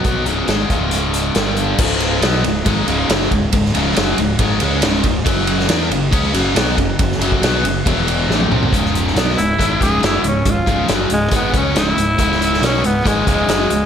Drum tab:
CC |----------------|x---------------|----------------|----------------|
RD |----------------|--x-x-x-x-x-x-x-|x-x-x-x-x-x-x-x-|x-x-x-x-x-x-x-x-|
HH |x-x-x-x-x-x-x-x-|----------------|----------------|----------------|
SD |----o-------o---|----o-------oo--|-o--o-------oo--|---oo-------o---|
T1 |----------------|----------------|----------------|----------------|
T2 |----------------|----------------|----------------|----------------|
FT |----------------|----------------|----------------|----------------|
BD |o-----o---------|o-------o-----o-|o-------o-----o-|o-------o-----o-|

CC |----------------|----------------|----------------|----------------|
RD |x-x-x-x-x-x-----|----------------|----------------|----------------|
HH |----------------|x-x-x-x-x-x-x-x-|x-x-x-x-x-x-x-x-|x-x-x-x-x-x-x-x-|
SD |-o--o-------o---|-o-oo-------o---|----o-------o---|-o-oo-------o---|
T1 |-------------o--|----------------|----------------|----------------|
T2 |--------------o-|----------------|----------------|----------------|
FT |---------------o|----------------|----------------|----------------|
BD |o--o----o-------|o-------o-o-----|o-o-----o-o-----|o-------o-o-----|